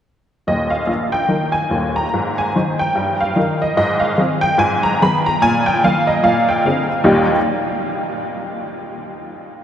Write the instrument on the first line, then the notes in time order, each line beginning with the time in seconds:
honky-tonk piano
0.47 D#1 D#2 D#5
0.70 F5
0.87 A#1
1.12 G5
1.28 D#3 D#4 A#4
1.52 G#5
1.70 D#1 D#2
1.96 A#5
2.14 G#2
2.38 G#5
2.55 D#3 D#4 C5
2.79 G5
2.95 G2
3.21 F5
3.36 D#3 D#4 A#4
3.62 D#5
3.77 G#2 D#5
4.00 F5
4.18 D#3 C4 G#4
4.41 G5
4.58 G#2 G#5
4.83 A#5
5.02 D#3 B3 G#4 B5
5.26 A#5
5.42 A#2 G#5
5.66 G5
5.84 D#3 A#3 F4 F5
6.07 D#5
6.23 A#2 F5
6.49 G5
6.65 D3 C4 G#4 F5
7.04 D#2 A#2 G3 A#3 D#4 G4 G5